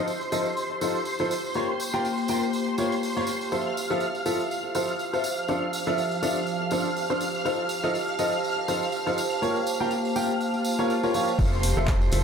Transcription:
Already playing: ambient pad G4 C5 F5 A5, analog synth pad C5 C6
0.07 tambourine
0.21 tambourine
0.32 upright piano F3 D#4 F4 A4 D#5, tambourine
0.45 tambourine
0.57 tambourine
0.81 upright piano F3 D#4 F4 A4 C5, tambourine
0.95 tambourine
1.05 tambourine
1.19 upright piano F3 D#4 F4 A4 C5, tambourine
1.31 tambourine
1.44 tambourine
1.54 ambient pad A#3, upright piano A#3 F4 G4 A#4 C#5, tambourine
1.80 ambient pad C5 F5, tambourine
1.94 upright piano A#3 F4 G4 A#4 G5, tambourine
2.05 tambourine
2.10 ambient pad A5
2.18 tambourine
2.28 upright piano A#3 F4 G4 A#4 G5, tambourine
2.43 tambourine
2.53 tambourine
2.78 upright piano A#3 F4 G4 A#4 C#5, tambourine
2.92 tambourine
3.03 tambourine
3.17 upright piano A#3 F4 G4 A#4 C#5, tambourine
3.27 tambourine
3.41 tambourine
3.52 upright piano F3 E4 F4 A4 C5, analog synth pad F5 F6, tambourine
3.77 tambourine
3.90 upright piano F3 E4 F4 A4 E5, tambourine
4.00 tambourine
4.15 tambourine
4.26 upright piano F3 E4 F4 A4 E5, tambourine
4.40 tambourine
4.51 tambourine
4.75 upright piano F3 E4 F4 A4 C5, tambourine
4.89 tambourine
4.99 tambourine
5.13 upright piano E4 F4 A4 C5, tambourine
5.24 ambient pad F3, tambourine
5.37 tambourine
5.48 upright piano F3 D4 F4 A4 C5, tambourine
5.73 tambourine
5.87 upright piano F3 D4 F4 A4 E5, tambourine
5.98 tambourine
6.11 tambourine
6.22 upright piano F3 D4 F4 A4 E5, tambourine
6.36 tambourine
6.47 tambourine
6.71 upright piano F3 D4 F4 A4 C5, tambourine
6.85 tambourine
6.96 tambourine
7.10 upright piano F3 D4 F4 A4 C5, tambourine
7.21 tambourine
7.34 tambourine
7.45 upright piano F3 D#4 F4 A4 C5, tambourine
7.69 tambourine
7.84 upright piano F3 D#4 F4 A4 D#5, tambourine
7.95 tambourine
8.08 tambourine
8.19 upright piano F3 D#4 F4 A4 D#5, tambourine
8.32 tambourine
8.44 tambourine
8.68 upright piano F3 D#4 F4 A4 C5, tambourine
8.83 tambourine
8.92 tambourine
9.07 upright piano F3 D#4 F4 A4 C5, tambourine
9.18 tambourine
9.31 tambourine
9.42 upright piano A#3 F4 G4 A#4 C#5, ambient pad A#3, tambourine
9.56 tambourine
9.67 tambourine
9.80 upright piano A#3 F4 G4 A#4 G5
9.91 tambourine
10.05 tambourine
10.16 upright piano A#3 F4 G4 A#4 G5, tambourine
10.30 tambourine
10.40 tambourine, swell
10.54 tambourine
10.65 tambourine
10.79 upright piano A#3 F4 G4 A#4 C#5
10.90 tambourine
11.03 upright piano A#3 F4 G4 A#4 C#5, tambourine
11.14 upright piano F3 F4 G4 A#4 C#5, tambourine
11.28 tambourine
11.39 fm bass F1, upright piano F3 E4 F4 A4 C5, analog synth pad C5 C6, kick, tambourine, downlifter
11.53 tambourine
11.63 open hi-hat, tambourine
11.77 fm bass F1, upright piano F3 E4 F4 A4 E5, tambourine
11.87 kick, clap, tambourine
12.02 tambourine
12.12 fm bass F1, upright piano F3 E4 F4 A4 E5, open hi-hat, tambourine

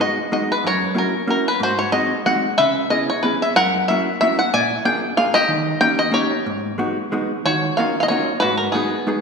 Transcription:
Already playing: five-string banjo B4
0.00 hollow-body jazz guitar G#3 B3 D#4 F#4, five-string banjo D#5
0.32 hollow-body jazz guitar G#3 B3 D#4 F#4, five-string banjo D#5
0.52 five-string banjo B4
0.64 hollow-body jazz guitar F#2, five-string banjo A#4 C#5
0.95 hollow-body jazz guitar A#3 C#4 E4 F#4, five-string banjo A#4
1.27 hollow-body jazz guitar A#3 C#4 E4 F#4, five-string banjo A#4
1.48 five-string banjo B4
1.60 hollow-body jazz guitar G#2, five-string banjo F#4 C5
1.79 five-string banjo C#5
1.92 hollow-body jazz guitar G#3 C4 D#4 F#4, five-string banjo D#5
2.26 hollow-body jazz guitar G#3 C4 D#4 F#4, five-string banjo F#5
2.58 hollow-body jazz guitar C#3, five-string banjo B4 E5
2.90 hollow-body jazz guitar B3 C#4 E4 G#4, five-string banjo D#5
3.10 five-string banjo C#5
3.23 hollow-body jazz guitar B3 C#4 E4 G#4, five-string banjo B4
3.42 five-string banjo E5
3.56 hollow-body jazz guitar F#2, five-string banjo A#4 F#5
3.88 hollow-body jazz guitar A#3 C#4 E4 F#4, five-string banjo E5
4.21 hollow-body jazz guitar A#3 C#4 E4 F#4, five-string banjo E5
4.39 five-string banjo F#5
4.53 hollow-body jazz guitar A#2, five-string banjo D5 G#5
4.85 hollow-body jazz guitar A#3 D4 F4 G#4, five-string banjo G5
5.17 hollow-body jazz guitar A#3 D4 F4 G#4, five-string banjo F5
5.34 five-string banjo G4 D#5
5.48 hollow-body jazz guitar D#3
5.81 hollow-body jazz guitar A#3 C#4 D#4 G4, five-string banjo G5
5.99 five-string banjo D#5
6.12 hollow-body jazz guitar A#3 C#4 D#4 G4, five-string banjo G4 C#5
6.46 hollow-body jazz guitar G#2
6.78 hollow-body jazz guitar G#3 B3 D#4 F#4
7.12 hollow-body jazz guitar G#3 B3 D#4 F#4
7.46 hollow-body jazz guitar D#3, five-string banjo F#4 C#5
7.77 hollow-body jazz guitar A#3 C#4 D#4 F4 F#4, five-string banjo F5
8.00 five-string banjo D#5 F5
8.08 hollow-body jazz guitar A#3 C#4 D#4 F4 F#4, five-string banjo C#5
8.40 hollow-body jazz guitar G#2, five-string banjo F#4 B4
8.57 five-string banjo A#4
8.72 hollow-body jazz guitar G#3 B3 D#4 F#4, five-string banjo B3 G#4
8.76 hollow-body jazz guitar G#4
9.07 hollow-body jazz guitar G#3 B3 D#4 F#4 G#4

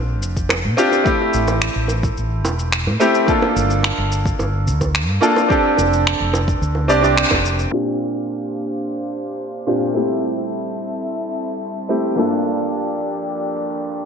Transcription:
Already playing: fretless electric bass A#1, grand piano C4 D4 F4 G4
0.23 fretless electric bass F1, shaker
0.37 kick, shaker
0.49 finger snap, high bongo, shaker
0.65 fretless electric bass A#2
0.77 grand piano C4 D4 F4 G4, shaker
0.92 high bongo, shaker
1.04 grand piano A3 C4 E4 G4, kick, shaker
1.33 fretless electric bass A1, shaker
1.48 high bongo, shaker
1.62 finger snap, shaker
1.76 fretless electric bass A1
1.88 high bongo, shaker
2.03 kick, shaker
2.17 fretless electric bass A1, shaker
2.45 fretless electric bass E1, high bongo, shaker
2.59 shaker
2.72 finger snap, shaker
2.87 fretless electric bass A2, high bongo
3.00 grand piano A3 C4 E4 G4, shaker
3.15 shaker
3.26 grand piano A#3 D4 F4 A4, kick, shaker
3.42 high bongo
3.56 fretless electric bass G1, shaker
3.70 shaker
3.83 finger snap, high bongo, shaker
3.98 fretless electric bass G1
4.12 shaker
4.25 kick, shaker
4.39 fretless electric bass G1, high bongo, shaker
4.67 fretless electric bass D2, shaker
4.81 kick, high bongo, shaker
4.95 finger snap, shaker
5.10 fretless electric bass G2
5.21 grand piano A#3 D4 F4 A4, shaker
5.36 high bongo, shaker
5.48 grand piano C4 D4 G4 A4, kick, shaker
5.77 fretless electric bass F1, high bongo, shaker
5.93 shaker
6.07 finger snap, shaker
6.20 fretless electric bass F1
6.34 high bongo, shaker
6.48 kick, shaker
6.62 fretless electric bass D2, shaker
6.75 high bongo
6.88 fretless electric bass C2, grand piano C4 D4 G4 D5, shaker
7.01 grand piano C4 D4 G4 D5, shaker
7.17 finger snap, shaker
7.31 fretless electric bass F1, kick, high bongo
7.45 shaker
7.59 shaker
7.71 grand piano A#2 C4 D4 F4 G4, string section A#3 D4 G4 C5 F5, shaker
8.01 shaker
8.15 shaker
8.28 shaker
8.56 shaker
8.70 shaker
9.12 shaker
9.26 shaker
9.40 shaker
9.67 grand piano A#2 C4 D4 F4 G4, shaker
9.81 shaker
9.94 string section G3 C4 E4 A4 E5, grand piano A3 C4 E4 G4, shaker
10.22 shaker
10.37 shaker
10.50 shaker
10.78 shaker
10.92 shaker
11.06 shaker
11.34 shaker
11.48 shaker
11.61 shaker
11.89 grand piano A3 C4 E4 G4, shaker
12.03 shaker
12.16 grand piano G2 A#3 D4 F4 A4, string section F3 A#3 D4 G4 D5, shaker
12.44 shaker
12.59 shaker
12.73 shaker
13.01 shaker
13.15 shaker
13.29 shaker
13.56 shaker
13.71 shaker
13.85 shaker

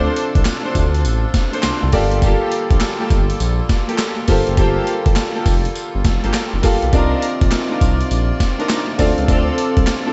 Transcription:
Already playing: accordion C3 F3 D4 F4 A4, grand piano C4 D4 F4 A4 D5, string section D4 F4 A4 C5
0.16 closed hi-hat
0.35 analog synth bass C2, kick, closed hi-hat
0.45 snare, clap, closed hi-hat, tambourine
0.65 string section D4 F4 A4 C5
0.75 analog synth bass D2, kick, closed hi-hat, tambourine
0.94 closed hi-hat
1.05 analog synth bass A1, closed hi-hat, tambourine
1.34 kick, snare, closed hi-hat, tambourine
1.53 string section D4 F4 A4 C5, closed hi-hat
1.63 analog synth bass C2, grand piano C6, snare, clap, closed hi-hat, tambourine
1.83 analog synth bass C2
1.92 analog synth bass G1, accordion D3 G3 A#3, grand piano A#3 F4 G4 A4 D5 F5, string section A#3 F4 G4 A4, kick, open hi-hat, tambourine
2.12 closed hi-hat
2.22 string section A#3 F4 G4 A4, kick, closed hi-hat, tambourine
2.52 closed hi-hat
2.71 analog synth bass A#1, kick, closed hi-hat
2.80 snare, clap, closed hi-hat, tambourine
3.00 string section A#3 F4 G4 A4
3.10 analog synth bass G1, kick, closed hi-hat, tambourine
3.30 closed hi-hat
3.40 analog synth bass A#1, closed hi-hat, tambourine
3.69 kick, snare, closed hi-hat, tambourine
3.88 string section A#3 F4 G4 A4, closed hi-hat
3.98 snare, clap, closed hi-hat, tambourine
4.28 analog synth bass G1, grand piano A#3 F4 G4 A4 C5, string section A#3 F4 G4 A4, kick, open hi-hat, tambourine
4.47 analog synth bass F#1, closed hi-hat
4.57 analog synth bass G1, grand piano A#3 F4 G4 A4 C5, string section A#3 F4 G4 A4, kick, closed hi-hat, tambourine
4.87 closed hi-hat
5.06 analog synth bass G1, kick, closed hi-hat
5.16 snare, clap, closed hi-hat, tambourine
5.35 string section A#3 F4 G4 A4
5.46 analog synth bass F1, kick, open hi-hat, tambourine
5.65 closed hi-hat
5.75 closed hi-hat, tambourine
5.95 analog synth bass G1
6.05 analog synth bass F1, kick, snare, closed hi-hat, tambourine
6.23 analog synth bass G1, string section A#3 F4 G4 A4, closed hi-hat
6.33 snare, clap, closed hi-hat, tambourine
6.54 analog synth bass F1
6.63 analog synth bass G1, grand piano A#3 F4 G4 A4 F5, string section A#3 F4 G4 A4, kick, open hi-hat, tambourine
6.82 analog synth bass B1, closed hi-hat
6.92 analog synth bass C2, accordion C3 D#3 A#3 D5, grand piano C4 D#4 F4 A#4 D5, string section D4 D#4 F4 A#4, kick, closed hi-hat, tambourine
7.22 closed hi-hat
7.41 analog synth bass A#1, kick, closed hi-hat
7.51 snare, clap, closed hi-hat, tambourine
7.71 string section D4 D#4 F4 A#4
7.81 analog synth bass C2, kick, closed hi-hat, tambourine
8.01 closed hi-hat
8.11 analog synth bass A#1, closed hi-hat, tambourine
8.40 kick, snare, closed hi-hat, tambourine
8.59 string section D4 D#4 F4 A#4, closed hi-hat
8.69 snare, clap, closed hi-hat, tambourine
8.98 analog synth bass D2, accordion F3 A4, grand piano C4 D4 F4 A4 D5, string section C4 D4 F4 A4, kick, open hi-hat, tambourine
9.18 analog synth bass C#2, closed hi-hat
9.28 analog synth bass D2, string section C4 D4 F4 A4, kick, closed hi-hat, tambourine
9.58 closed hi-hat
9.77 analog synth bass C2, kick, closed hi-hat
9.87 snare, clap, closed hi-hat, tambourine
10.06 string section C4 D4 F4 A4

